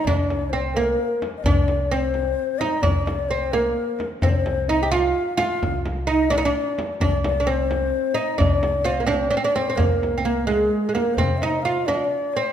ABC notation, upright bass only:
X:1
M:6/8
L:1/8
Q:3/8=86
K:none
V:1 name="Upright bass" clef=bass
C,,4 z2 | C,,4 z2 | C,,4 z2 | C,,4 z2 |
C,,4 z2 | C,,4 z2 | C,,4 z2 | C,,4 z2 |
C,4 z2 |]